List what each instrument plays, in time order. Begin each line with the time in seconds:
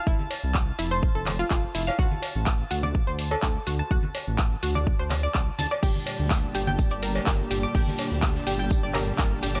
Already playing: synth texture A5
0.07 detuned saw bass F1, synth pluck E4, kick
0.19 high conga
0.31 open hi-hat, cowbell
0.43 detuned saw bass C2
0.54 kick, clap
0.79 detuned saw bass F1, synth pluck E4, open hi-hat
0.91 synth pluck C5
1.03 kick
1.15 detuned saw bass F1, synth pluck A4
1.26 clap, open hi-hat, cowbell, high conga
1.39 synth pluck F4
1.50 detuned saw bass F1, synth pluck F4, kick, clap
1.75 detuned saw bass F1, synth pluck E4, open hi-hat
1.87 synth pluck F5, cowbell
1.99 detuned saw bass D2, synth pluck F#4, kick
2.11 high conga
2.22 open hi-hat, cowbell
2.35 detuned saw bass A1
2.46 kick, clap
2.71 detuned saw bass D2, synth pluck F#4, open hi-hat
2.83 synth pluck D5, high conga
2.95 kick
3.07 detuned saw bass D2, synth pluck C5
3.19 open hi-hat
3.31 synth pluck A4, cowbell
3.42 detuned saw bass D2, synth pluck A4, kick, clap
3.67 detuned saw bass D2, synth pluck F#4, open hi-hat
3.79 synth pluck A5
3.91 detuned saw bass D2, synth pluck F#4, kick
4.03 high conga
4.15 open hi-hat, cowbell
4.27 detuned saw bass A1
4.38 kick, clap
4.63 detuned saw bass D2, synth pluck F#4, open hi-hat
4.75 synth pluck D5, high conga
4.87 kick
4.99 detuned saw bass D2, synth pluck C5
5.10 clap, open hi-hat, cowbell, high conga
5.23 synth pluck D5
5.34 detuned saw bass C2, synth pluck D5, kick, clap
5.59 detuned saw bass D2, synth pluck A5, open hi-hat, high conga
5.71 synth pluck D5, cowbell
5.83 detuned saw bass G1, string section A#2 D3 G3 D4 G4, synth pluck G4, synth texture A5, kick, crash, tambourine
5.95 high conga
6.06 open hi-hat, tambourine, cowbell
6.19 detuned saw bass D2
6.30 kick, snare, clap, tambourine
6.54 detuned saw bass G1, synth pluck G4, open hi-hat, tambourine
6.67 synth pluck G5, high conga
6.79 kick, tambourine
6.91 detuned saw bass G1, synth pluck D5, closed hi-hat
7.02 synth pluck A#4, open hi-hat, tambourine
7.15 snare, cowbell
7.26 detuned saw bass G1, synth pluck A#4, kick, snare, clap, tambourine
7.51 detuned saw bass G1, synth pluck G4, open hi-hat, tambourine
7.63 synth pluck D6
7.75 detuned saw bass G1, synth pluck G4, kick, open hi-hat
7.87 snare, high conga
7.98 open hi-hat, tambourine, cowbell
8.11 detuned saw bass D2
8.22 kick, snare, clap, tambourine
8.35 snare
8.47 detuned saw bass G1, synth pluck G4, open hi-hat, tambourine
8.59 synth pluck G5
8.70 kick, tambourine
8.83 detuned saw bass G1, synth pluck D5
8.94 synth pluck A#4, snare, clap, open hi-hat, tambourine, cowbell, high conga
9.18 detuned saw bass G1, synth pluck A#4, kick, snare, clap, tambourine
9.43 detuned saw bass G1, synth pluck G4, open hi-hat, tambourine
9.55 synth pluck D6, closed hi-hat, cowbell